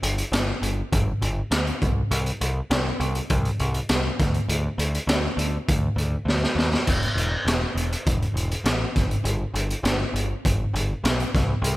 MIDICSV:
0, 0, Header, 1, 3, 480
1, 0, Start_track
1, 0, Tempo, 595238
1, 1697, Time_signature, 4, 2, 24, 8
1, 9490, End_track
2, 0, Start_track
2, 0, Title_t, "Picked electric bass"
2, 0, Program_c, 0, 34
2, 21, Note_on_c, 0, 31, 99
2, 174, Note_off_c, 0, 31, 0
2, 256, Note_on_c, 0, 31, 94
2, 411, Note_off_c, 0, 31, 0
2, 498, Note_on_c, 0, 31, 93
2, 652, Note_off_c, 0, 31, 0
2, 744, Note_on_c, 0, 31, 98
2, 896, Note_off_c, 0, 31, 0
2, 981, Note_on_c, 0, 31, 94
2, 1134, Note_off_c, 0, 31, 0
2, 1217, Note_on_c, 0, 38, 91
2, 1371, Note_off_c, 0, 38, 0
2, 1468, Note_on_c, 0, 36, 95
2, 1619, Note_off_c, 0, 36, 0
2, 1701, Note_on_c, 0, 36, 104
2, 1854, Note_off_c, 0, 36, 0
2, 1944, Note_on_c, 0, 36, 95
2, 2096, Note_off_c, 0, 36, 0
2, 2180, Note_on_c, 0, 36, 107
2, 2333, Note_off_c, 0, 36, 0
2, 2417, Note_on_c, 0, 36, 96
2, 2571, Note_off_c, 0, 36, 0
2, 2661, Note_on_c, 0, 36, 105
2, 2814, Note_off_c, 0, 36, 0
2, 2902, Note_on_c, 0, 36, 103
2, 3054, Note_off_c, 0, 36, 0
2, 3140, Note_on_c, 0, 36, 93
2, 3293, Note_off_c, 0, 36, 0
2, 3382, Note_on_c, 0, 38, 91
2, 3534, Note_off_c, 0, 38, 0
2, 3616, Note_on_c, 0, 38, 104
2, 3770, Note_off_c, 0, 38, 0
2, 3855, Note_on_c, 0, 38, 93
2, 4009, Note_off_c, 0, 38, 0
2, 4090, Note_on_c, 0, 38, 101
2, 4246, Note_off_c, 0, 38, 0
2, 4330, Note_on_c, 0, 38, 89
2, 4486, Note_off_c, 0, 38, 0
2, 4583, Note_on_c, 0, 38, 85
2, 4735, Note_off_c, 0, 38, 0
2, 4806, Note_on_c, 0, 38, 92
2, 4963, Note_off_c, 0, 38, 0
2, 5042, Note_on_c, 0, 38, 85
2, 5200, Note_off_c, 0, 38, 0
2, 5283, Note_on_c, 0, 39, 94
2, 5441, Note_off_c, 0, 39, 0
2, 5543, Note_on_c, 0, 28, 104
2, 5695, Note_off_c, 0, 28, 0
2, 5766, Note_on_c, 0, 28, 91
2, 5923, Note_off_c, 0, 28, 0
2, 6007, Note_on_c, 0, 28, 102
2, 6164, Note_off_c, 0, 28, 0
2, 6250, Note_on_c, 0, 28, 84
2, 6406, Note_off_c, 0, 28, 0
2, 6501, Note_on_c, 0, 28, 104
2, 6653, Note_off_c, 0, 28, 0
2, 6725, Note_on_c, 0, 28, 85
2, 6883, Note_off_c, 0, 28, 0
2, 6969, Note_on_c, 0, 33, 88
2, 7125, Note_off_c, 0, 33, 0
2, 7224, Note_on_c, 0, 31, 86
2, 7376, Note_off_c, 0, 31, 0
2, 7449, Note_on_c, 0, 31, 105
2, 7605, Note_off_c, 0, 31, 0
2, 7690, Note_on_c, 0, 31, 88
2, 7846, Note_off_c, 0, 31, 0
2, 7930, Note_on_c, 0, 31, 107
2, 8086, Note_off_c, 0, 31, 0
2, 8169, Note_on_c, 0, 31, 91
2, 8326, Note_off_c, 0, 31, 0
2, 8426, Note_on_c, 0, 31, 97
2, 8577, Note_off_c, 0, 31, 0
2, 8657, Note_on_c, 0, 31, 98
2, 8811, Note_off_c, 0, 31, 0
2, 8900, Note_on_c, 0, 35, 93
2, 9054, Note_off_c, 0, 35, 0
2, 9147, Note_on_c, 0, 36, 95
2, 9298, Note_off_c, 0, 36, 0
2, 9368, Note_on_c, 0, 36, 109
2, 9490, Note_off_c, 0, 36, 0
2, 9490, End_track
3, 0, Start_track
3, 0, Title_t, "Drums"
3, 25, Note_on_c, 9, 42, 90
3, 105, Note_off_c, 9, 42, 0
3, 145, Note_on_c, 9, 42, 55
3, 226, Note_off_c, 9, 42, 0
3, 266, Note_on_c, 9, 42, 110
3, 271, Note_on_c, 9, 38, 112
3, 347, Note_off_c, 9, 42, 0
3, 352, Note_off_c, 9, 38, 0
3, 506, Note_on_c, 9, 42, 87
3, 587, Note_off_c, 9, 42, 0
3, 745, Note_on_c, 9, 42, 119
3, 747, Note_on_c, 9, 36, 110
3, 826, Note_off_c, 9, 42, 0
3, 827, Note_off_c, 9, 36, 0
3, 984, Note_on_c, 9, 42, 80
3, 1065, Note_off_c, 9, 42, 0
3, 1221, Note_on_c, 9, 42, 112
3, 1226, Note_on_c, 9, 38, 112
3, 1301, Note_off_c, 9, 42, 0
3, 1306, Note_off_c, 9, 38, 0
3, 1347, Note_on_c, 9, 42, 45
3, 1427, Note_off_c, 9, 42, 0
3, 1467, Note_on_c, 9, 36, 109
3, 1469, Note_on_c, 9, 42, 76
3, 1547, Note_off_c, 9, 36, 0
3, 1549, Note_off_c, 9, 42, 0
3, 1704, Note_on_c, 9, 42, 92
3, 1784, Note_off_c, 9, 42, 0
3, 1822, Note_on_c, 9, 42, 46
3, 1903, Note_off_c, 9, 42, 0
3, 1944, Note_on_c, 9, 42, 78
3, 2025, Note_off_c, 9, 42, 0
3, 2183, Note_on_c, 9, 42, 92
3, 2188, Note_on_c, 9, 38, 119
3, 2263, Note_off_c, 9, 42, 0
3, 2268, Note_off_c, 9, 38, 0
3, 2422, Note_on_c, 9, 42, 70
3, 2503, Note_off_c, 9, 42, 0
3, 2539, Note_on_c, 9, 42, 49
3, 2620, Note_off_c, 9, 42, 0
3, 2658, Note_on_c, 9, 42, 94
3, 2663, Note_on_c, 9, 36, 118
3, 2739, Note_off_c, 9, 42, 0
3, 2744, Note_off_c, 9, 36, 0
3, 2782, Note_on_c, 9, 42, 52
3, 2863, Note_off_c, 9, 42, 0
3, 2898, Note_on_c, 9, 42, 75
3, 2978, Note_off_c, 9, 42, 0
3, 3017, Note_on_c, 9, 42, 46
3, 3097, Note_off_c, 9, 42, 0
3, 3136, Note_on_c, 9, 42, 109
3, 3140, Note_on_c, 9, 38, 110
3, 3216, Note_off_c, 9, 42, 0
3, 3221, Note_off_c, 9, 38, 0
3, 3383, Note_on_c, 9, 36, 113
3, 3383, Note_on_c, 9, 42, 84
3, 3387, Note_on_c, 9, 38, 36
3, 3463, Note_off_c, 9, 42, 0
3, 3464, Note_off_c, 9, 36, 0
3, 3468, Note_off_c, 9, 38, 0
3, 3501, Note_on_c, 9, 42, 51
3, 3582, Note_off_c, 9, 42, 0
3, 3623, Note_on_c, 9, 42, 109
3, 3703, Note_off_c, 9, 42, 0
3, 3864, Note_on_c, 9, 42, 86
3, 3945, Note_off_c, 9, 42, 0
3, 3987, Note_on_c, 9, 42, 53
3, 4068, Note_off_c, 9, 42, 0
3, 4102, Note_on_c, 9, 42, 114
3, 4107, Note_on_c, 9, 38, 123
3, 4183, Note_off_c, 9, 42, 0
3, 4187, Note_off_c, 9, 38, 0
3, 4344, Note_on_c, 9, 42, 90
3, 4424, Note_off_c, 9, 42, 0
3, 4584, Note_on_c, 9, 42, 113
3, 4585, Note_on_c, 9, 36, 123
3, 4665, Note_off_c, 9, 42, 0
3, 4666, Note_off_c, 9, 36, 0
3, 4823, Note_on_c, 9, 42, 79
3, 4904, Note_off_c, 9, 42, 0
3, 5068, Note_on_c, 9, 38, 69
3, 5148, Note_off_c, 9, 38, 0
3, 5190, Note_on_c, 9, 38, 70
3, 5271, Note_off_c, 9, 38, 0
3, 5311, Note_on_c, 9, 38, 94
3, 5392, Note_off_c, 9, 38, 0
3, 5432, Note_on_c, 9, 38, 94
3, 5513, Note_off_c, 9, 38, 0
3, 5541, Note_on_c, 9, 42, 89
3, 5541, Note_on_c, 9, 49, 100
3, 5544, Note_on_c, 9, 36, 107
3, 5622, Note_off_c, 9, 42, 0
3, 5622, Note_off_c, 9, 49, 0
3, 5625, Note_off_c, 9, 36, 0
3, 5666, Note_on_c, 9, 42, 45
3, 5746, Note_off_c, 9, 42, 0
3, 5787, Note_on_c, 9, 42, 78
3, 5868, Note_off_c, 9, 42, 0
3, 6027, Note_on_c, 9, 42, 108
3, 6032, Note_on_c, 9, 38, 109
3, 6108, Note_off_c, 9, 42, 0
3, 6113, Note_off_c, 9, 38, 0
3, 6268, Note_on_c, 9, 42, 69
3, 6349, Note_off_c, 9, 42, 0
3, 6389, Note_on_c, 9, 42, 51
3, 6470, Note_off_c, 9, 42, 0
3, 6503, Note_on_c, 9, 42, 104
3, 6505, Note_on_c, 9, 36, 125
3, 6584, Note_off_c, 9, 42, 0
3, 6586, Note_off_c, 9, 36, 0
3, 6631, Note_on_c, 9, 42, 45
3, 6711, Note_off_c, 9, 42, 0
3, 6746, Note_on_c, 9, 42, 69
3, 6827, Note_off_c, 9, 42, 0
3, 6865, Note_on_c, 9, 42, 49
3, 6945, Note_off_c, 9, 42, 0
3, 6978, Note_on_c, 9, 42, 105
3, 6983, Note_on_c, 9, 38, 112
3, 7059, Note_off_c, 9, 42, 0
3, 7064, Note_off_c, 9, 38, 0
3, 7223, Note_on_c, 9, 42, 82
3, 7225, Note_on_c, 9, 36, 109
3, 7228, Note_on_c, 9, 38, 36
3, 7304, Note_off_c, 9, 42, 0
3, 7305, Note_off_c, 9, 36, 0
3, 7309, Note_off_c, 9, 38, 0
3, 7345, Note_on_c, 9, 42, 48
3, 7425, Note_off_c, 9, 42, 0
3, 7460, Note_on_c, 9, 42, 90
3, 7540, Note_off_c, 9, 42, 0
3, 7703, Note_on_c, 9, 42, 77
3, 7784, Note_off_c, 9, 42, 0
3, 7824, Note_on_c, 9, 42, 44
3, 7905, Note_off_c, 9, 42, 0
3, 7942, Note_on_c, 9, 42, 118
3, 7947, Note_on_c, 9, 38, 104
3, 8023, Note_off_c, 9, 42, 0
3, 8028, Note_off_c, 9, 38, 0
3, 8190, Note_on_c, 9, 42, 82
3, 8271, Note_off_c, 9, 42, 0
3, 8427, Note_on_c, 9, 36, 117
3, 8429, Note_on_c, 9, 42, 113
3, 8508, Note_off_c, 9, 36, 0
3, 8509, Note_off_c, 9, 42, 0
3, 8672, Note_on_c, 9, 42, 81
3, 8753, Note_off_c, 9, 42, 0
3, 8910, Note_on_c, 9, 42, 113
3, 8914, Note_on_c, 9, 38, 118
3, 8990, Note_off_c, 9, 42, 0
3, 8995, Note_off_c, 9, 38, 0
3, 9030, Note_on_c, 9, 42, 49
3, 9111, Note_off_c, 9, 42, 0
3, 9149, Note_on_c, 9, 36, 112
3, 9156, Note_on_c, 9, 42, 81
3, 9161, Note_on_c, 9, 38, 35
3, 9230, Note_off_c, 9, 36, 0
3, 9237, Note_off_c, 9, 42, 0
3, 9241, Note_off_c, 9, 38, 0
3, 9387, Note_on_c, 9, 42, 101
3, 9468, Note_off_c, 9, 42, 0
3, 9490, End_track
0, 0, End_of_file